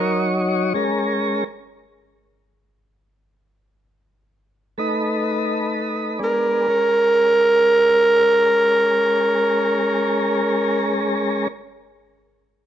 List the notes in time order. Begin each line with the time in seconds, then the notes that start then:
Already playing: F#3 D#4 A#4 C#5
0.74 G#3 C#4 A#4
4.78 A3 D#4 B4
6.19 G#3 B3 D4
6.24 A#4
6.68 G#3 C#4 A#4